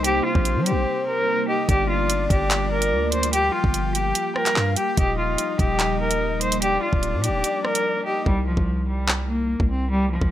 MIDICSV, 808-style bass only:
0, 0, Header, 1, 2, 480
1, 0, Start_track
1, 0, Key_signature, -3, "minor"
1, 0, Tempo, 410959
1, 51, Time_signature, 4, 2, 24, 8
1, 12043, End_track
2, 0, Start_track
2, 0, Title_t, "808-style bass"
2, 0, Program_c, 0, 38
2, 0, Note_on_c, 0, 36, 105
2, 244, Note_off_c, 0, 36, 0
2, 411, Note_on_c, 0, 34, 108
2, 651, Note_on_c, 0, 55, 98
2, 668, Note_off_c, 0, 34, 0
2, 831, Note_on_c, 0, 34, 105
2, 849, Note_off_c, 0, 55, 0
2, 1002, Note_off_c, 0, 34, 0
2, 1971, Note_on_c, 0, 31, 113
2, 2662, Note_off_c, 0, 31, 0
2, 2689, Note_on_c, 0, 31, 108
2, 3410, Note_on_c, 0, 38, 100
2, 3427, Note_off_c, 0, 31, 0
2, 4094, Note_off_c, 0, 38, 0
2, 4250, Note_on_c, 0, 31, 102
2, 4827, Note_off_c, 0, 31, 0
2, 5332, Note_on_c, 0, 43, 109
2, 5562, Note_off_c, 0, 43, 0
2, 5811, Note_on_c, 0, 27, 112
2, 6272, Note_off_c, 0, 27, 0
2, 6530, Note_on_c, 0, 27, 109
2, 7924, Note_off_c, 0, 27, 0
2, 8091, Note_on_c, 0, 26, 106
2, 8331, Note_on_c, 0, 46, 101
2, 8349, Note_off_c, 0, 26, 0
2, 8509, Note_on_c, 0, 26, 104
2, 8527, Note_off_c, 0, 46, 0
2, 8681, Note_off_c, 0, 26, 0
2, 9650, Note_on_c, 0, 36, 113
2, 9996, Note_off_c, 0, 36, 0
2, 10011, Note_on_c, 0, 36, 103
2, 11164, Note_off_c, 0, 36, 0
2, 11212, Note_on_c, 0, 36, 98
2, 11903, Note_off_c, 0, 36, 0
2, 11931, Note_on_c, 0, 36, 101
2, 12043, Note_off_c, 0, 36, 0
2, 12043, End_track
0, 0, End_of_file